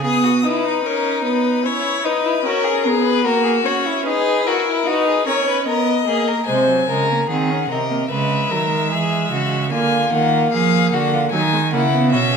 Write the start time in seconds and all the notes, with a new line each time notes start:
0.04 B3 G#4 D#6
0.24 F#4
0.44 D#4 E4 B4
0.65 D#4
0.84 C#4 A#4
1.24 B3 B4
1.64 C#4 E4 C#5
2.04 D#4 B4
2.25 E4
2.44 C#4 F#4 A#4
2.64 G#4
2.83 B3 G#4 A#4
3.03 B4
3.24 A#3 F#4 A#4
3.44 G#4
3.65 C#4 F#4 C#5
3.86 E4
4.06 D#4 G#4 B4
4.45 E4 F#4 A#4
4.67 E4
4.86 D#4 F#4 B4
5.07 G#4
5.27 C#4 A#4 C#5
5.47 B4
5.68 B3 A#4 D#5
6.07 A#3 G#4
6.28 A#4
6.48 C3 G#3 C5 G#5
6.68 F#3
6.88 C#3 G#3 A#4
7.11 A#3
7.28 D#3 C4 G#4 F#5
7.51 C#4
7.70 C3 C4 A#4 D#5
7.91 A#3
8.11 C#3 G#3 B4 E5
8.50 D#3 F#3 A#4
8.71 G#3
8.91 E3 G#4
9.31 C#3 F#4
9.72 D3 A#3 F4 G#5
10.12 D#3 A#3 F#5
10.53 F3 G#4 F5
10.92 D3 F#4 F#5
11.14 F4
11.32 D#3 F#3 D#4 G#5
11.53 G#3
11.72 C#3 A#3 E4 F#5
11.93 B3
12.13 B2 C#4 F#4 E5
12.34 G#4